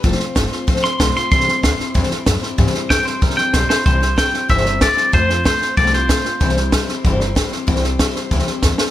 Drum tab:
HH |----p-------p---|----p-------p---|----p-------p---|----p-------p---|
SD |ooo-o-o-ooo-o-o-|ooo-o-o-ooo-o-o-|ooo-o-o-ooo-o-o-|o-o-o-o-ooo-o-o-|
BD |o---o---o---o---|o---o---o---o---|o---o---o---o---|o---o---o---o---|

HH |----p-------p---|----p-------p---|----p-------p---|
SD |o-o-o-o-ooo-o-o-|ooo-o-o-o-o-o-o-|ooo-o-o-ooo-o-o-|
BD |o---o---o---o---|o---o---o---o---|o---o---o---o---|